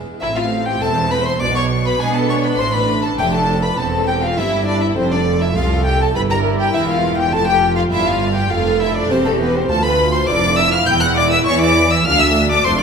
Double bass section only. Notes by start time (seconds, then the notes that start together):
0.22 A1
0.82 E1
1.41 B1
2.00 B2
2.59 A1
3.19 F1
3.78 E1
4.36 G1
4.96 F1
5.56 C2
6.15 G1
6.75 E1
7.33 F1
7.92 G1
8.51 F1
9.10 E1
9.70 D2
10.29 F1
10.88 E1
11.47 E2
12.06 D2
12.65 F1